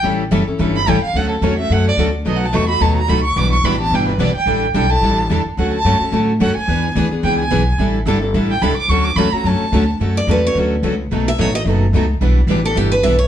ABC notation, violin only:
X:1
M:4/4
L:1/16
Q:"Swing" 1/4=217
K:D
V:1 name="Violin"
z8 z2 b2 g2 =f2 | f2 A2 c2 e2 f2 d2 z4 | (3^d2 f2 a2 c'2 b2 a2 _b2 =b2 c'2 | d'2 c'2 b2 a2 g2 B2 d2 g2- |
g2 z2 g2 a6 z4 | f2 a6 z4 f2 ^g2- | ^g4 z4 =g2 ^g6 | z8 z2 g2 b2 d'2 |
c'2 d'2 b2 _b2 a6- a z | z16 | z16 | z16 |]